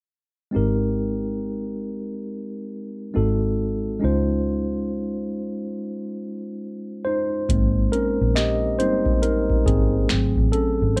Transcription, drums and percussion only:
0, 0, Header, 1, 2, 480
1, 0, Start_track
1, 0, Key_signature, -4, "major"
1, 0, Tempo, 869565
1, 296, Time_signature, 4, 2, 24, 8
1, 6072, End_track
2, 0, Start_track
2, 0, Title_t, "Drums"
2, 4135, Note_on_c, 9, 36, 96
2, 4139, Note_on_c, 9, 42, 73
2, 4190, Note_off_c, 9, 36, 0
2, 4194, Note_off_c, 9, 42, 0
2, 4378, Note_on_c, 9, 42, 53
2, 4433, Note_off_c, 9, 42, 0
2, 4615, Note_on_c, 9, 26, 69
2, 4619, Note_on_c, 9, 38, 98
2, 4626, Note_on_c, 9, 42, 79
2, 4671, Note_off_c, 9, 26, 0
2, 4674, Note_off_c, 9, 38, 0
2, 4681, Note_off_c, 9, 42, 0
2, 4856, Note_on_c, 9, 42, 59
2, 4912, Note_off_c, 9, 42, 0
2, 5000, Note_on_c, 9, 36, 82
2, 5055, Note_off_c, 9, 36, 0
2, 5095, Note_on_c, 9, 42, 83
2, 5150, Note_off_c, 9, 42, 0
2, 5243, Note_on_c, 9, 36, 80
2, 5298, Note_off_c, 9, 36, 0
2, 5334, Note_on_c, 9, 36, 95
2, 5341, Note_on_c, 9, 42, 67
2, 5389, Note_off_c, 9, 36, 0
2, 5397, Note_off_c, 9, 42, 0
2, 5571, Note_on_c, 9, 26, 88
2, 5575, Note_on_c, 9, 38, 98
2, 5578, Note_on_c, 9, 42, 77
2, 5626, Note_off_c, 9, 26, 0
2, 5630, Note_off_c, 9, 38, 0
2, 5633, Note_off_c, 9, 42, 0
2, 5719, Note_on_c, 9, 36, 79
2, 5774, Note_off_c, 9, 36, 0
2, 5813, Note_on_c, 9, 42, 66
2, 5869, Note_off_c, 9, 42, 0
2, 6072, End_track
0, 0, End_of_file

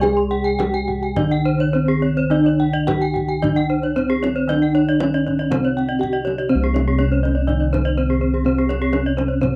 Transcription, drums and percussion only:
0, 0, Header, 1, 2, 480
1, 0, Start_track
1, 0, Tempo, 570342
1, 15, Time_signature, 4, 2, 24, 8
1, 2415, Tempo, 541028
1, 3855, Tempo, 508475
1, 5295, Tempo, 485044
1, 8796, End_track
2, 0, Start_track
2, 0, Title_t, "Kendang"
2, 25, Note_on_c, 9, 63, 55
2, 109, Note_off_c, 9, 63, 0
2, 269, Note_on_c, 9, 62, 21
2, 353, Note_off_c, 9, 62, 0
2, 502, Note_on_c, 9, 62, 27
2, 502, Note_on_c, 9, 63, 64
2, 586, Note_off_c, 9, 62, 0
2, 586, Note_off_c, 9, 63, 0
2, 619, Note_on_c, 9, 62, 26
2, 703, Note_off_c, 9, 62, 0
2, 743, Note_on_c, 9, 62, 21
2, 743, Note_on_c, 9, 64, 43
2, 827, Note_off_c, 9, 62, 0
2, 827, Note_off_c, 9, 64, 0
2, 979, Note_on_c, 9, 63, 52
2, 979, Note_on_c, 9, 64, 82
2, 1064, Note_off_c, 9, 63, 0
2, 1064, Note_off_c, 9, 64, 0
2, 1104, Note_on_c, 9, 62, 23
2, 1188, Note_off_c, 9, 62, 0
2, 1468, Note_on_c, 9, 62, 22
2, 1552, Note_off_c, 9, 62, 0
2, 2185, Note_on_c, 9, 62, 24
2, 2269, Note_off_c, 9, 62, 0
2, 2423, Note_on_c, 9, 62, 26
2, 2423, Note_on_c, 9, 63, 70
2, 2423, Note_on_c, 9, 64, 63
2, 2512, Note_off_c, 9, 62, 0
2, 2512, Note_off_c, 9, 63, 0
2, 2512, Note_off_c, 9, 64, 0
2, 2674, Note_on_c, 9, 62, 18
2, 2674, Note_on_c, 9, 64, 52
2, 2762, Note_off_c, 9, 62, 0
2, 2762, Note_off_c, 9, 64, 0
2, 2921, Note_on_c, 9, 64, 84
2, 3010, Note_off_c, 9, 64, 0
2, 3039, Note_on_c, 9, 62, 25
2, 3128, Note_off_c, 9, 62, 0
2, 3399, Note_on_c, 9, 62, 25
2, 3399, Note_on_c, 9, 64, 55
2, 3488, Note_off_c, 9, 62, 0
2, 3488, Note_off_c, 9, 64, 0
2, 3628, Note_on_c, 9, 63, 43
2, 3717, Note_off_c, 9, 63, 0
2, 3865, Note_on_c, 9, 63, 43
2, 3960, Note_off_c, 9, 63, 0
2, 4102, Note_on_c, 9, 62, 22
2, 4197, Note_off_c, 9, 62, 0
2, 4337, Note_on_c, 9, 62, 23
2, 4337, Note_on_c, 9, 63, 59
2, 4431, Note_off_c, 9, 62, 0
2, 4431, Note_off_c, 9, 63, 0
2, 4472, Note_on_c, 9, 62, 21
2, 4566, Note_off_c, 9, 62, 0
2, 4596, Note_on_c, 9, 62, 20
2, 4596, Note_on_c, 9, 64, 43
2, 4690, Note_off_c, 9, 62, 0
2, 4690, Note_off_c, 9, 64, 0
2, 4722, Note_on_c, 9, 62, 20
2, 4816, Note_off_c, 9, 62, 0
2, 4822, Note_on_c, 9, 63, 61
2, 4822, Note_on_c, 9, 64, 75
2, 4917, Note_off_c, 9, 63, 0
2, 4917, Note_off_c, 9, 64, 0
2, 4948, Note_on_c, 9, 62, 24
2, 5042, Note_off_c, 9, 62, 0
2, 5075, Note_on_c, 9, 62, 25
2, 5169, Note_off_c, 9, 62, 0
2, 5309, Note_on_c, 9, 64, 54
2, 5408, Note_off_c, 9, 64, 0
2, 5546, Note_on_c, 9, 62, 19
2, 5546, Note_on_c, 9, 63, 39
2, 5645, Note_off_c, 9, 62, 0
2, 5645, Note_off_c, 9, 63, 0
2, 5666, Note_on_c, 9, 62, 24
2, 5765, Note_off_c, 9, 62, 0
2, 5903, Note_on_c, 9, 62, 19
2, 6002, Note_off_c, 9, 62, 0
2, 6028, Note_on_c, 9, 63, 44
2, 6127, Note_off_c, 9, 63, 0
2, 6271, Note_on_c, 9, 62, 20
2, 6370, Note_off_c, 9, 62, 0
2, 6516, Note_on_c, 9, 63, 37
2, 6615, Note_off_c, 9, 63, 0
2, 6753, Note_on_c, 9, 62, 18
2, 6753, Note_on_c, 9, 64, 55
2, 6852, Note_off_c, 9, 62, 0
2, 6852, Note_off_c, 9, 64, 0
2, 7000, Note_on_c, 9, 62, 18
2, 7000, Note_on_c, 9, 63, 51
2, 7000, Note_on_c, 9, 64, 55
2, 7099, Note_off_c, 9, 62, 0
2, 7099, Note_off_c, 9, 63, 0
2, 7099, Note_off_c, 9, 64, 0
2, 7836, Note_on_c, 9, 62, 19
2, 7935, Note_off_c, 9, 62, 0
2, 7954, Note_on_c, 9, 63, 41
2, 8052, Note_off_c, 9, 63, 0
2, 8176, Note_on_c, 9, 62, 19
2, 8176, Note_on_c, 9, 63, 51
2, 8275, Note_off_c, 9, 62, 0
2, 8275, Note_off_c, 9, 63, 0
2, 8427, Note_on_c, 9, 63, 44
2, 8526, Note_off_c, 9, 63, 0
2, 8672, Note_on_c, 9, 62, 18
2, 8672, Note_on_c, 9, 63, 38
2, 8672, Note_on_c, 9, 64, 61
2, 8771, Note_off_c, 9, 62, 0
2, 8771, Note_off_c, 9, 63, 0
2, 8771, Note_off_c, 9, 64, 0
2, 8796, End_track
0, 0, End_of_file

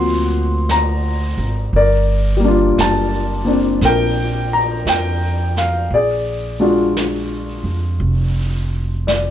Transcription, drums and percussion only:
0, 0, Header, 1, 2, 480
1, 0, Start_track
1, 0, Key_signature, -2, "minor"
1, 0, Tempo, 1045296
1, 791, Time_signature, 4, 2, 24, 8
1, 2713, Tempo, 1056338
1, 4257, End_track
2, 0, Start_track
2, 0, Title_t, "Drums"
2, 318, Note_on_c, 9, 25, 27
2, 318, Note_on_c, 9, 38, 35
2, 318, Note_on_c, 9, 44, 42
2, 364, Note_off_c, 9, 38, 0
2, 364, Note_off_c, 9, 44, 0
2, 799, Note_off_c, 9, 25, 0
2, 799, Note_on_c, 9, 25, 33
2, 1278, Note_off_c, 9, 25, 0
2, 1278, Note_on_c, 9, 25, 28
2, 1278, Note_on_c, 9, 38, 37
2, 1278, Note_on_c, 9, 44, 49
2, 1324, Note_off_c, 9, 38, 0
2, 1324, Note_off_c, 9, 44, 0
2, 1753, Note_off_c, 9, 25, 0
2, 1753, Note_on_c, 9, 25, 31
2, 1753, Note_on_c, 9, 38, 23
2, 1799, Note_off_c, 9, 38, 0
2, 2235, Note_off_c, 9, 25, 0
2, 2235, Note_on_c, 9, 25, 29
2, 2235, Note_on_c, 9, 38, 34
2, 2235, Note_on_c, 9, 44, 48
2, 2281, Note_off_c, 9, 38, 0
2, 2281, Note_off_c, 9, 44, 0
2, 2557, Note_on_c, 9, 38, 23
2, 2603, Note_off_c, 9, 38, 0
2, 2720, Note_off_c, 9, 25, 0
2, 2720, Note_on_c, 9, 25, 32
2, 3194, Note_off_c, 9, 25, 0
2, 3194, Note_on_c, 9, 25, 28
2, 3194, Note_on_c, 9, 38, 35
2, 3194, Note_on_c, 9, 44, 41
2, 3239, Note_off_c, 9, 38, 0
2, 3239, Note_off_c, 9, 44, 0
2, 3673, Note_off_c, 9, 25, 0
2, 3673, Note_on_c, 9, 25, 33
2, 4154, Note_off_c, 9, 25, 0
2, 4154, Note_on_c, 9, 25, 29
2, 4154, Note_on_c, 9, 38, 36
2, 4154, Note_on_c, 9, 44, 41
2, 4199, Note_off_c, 9, 38, 0
2, 4199, Note_off_c, 9, 44, 0
2, 4257, Note_off_c, 9, 25, 0
2, 4257, End_track
0, 0, End_of_file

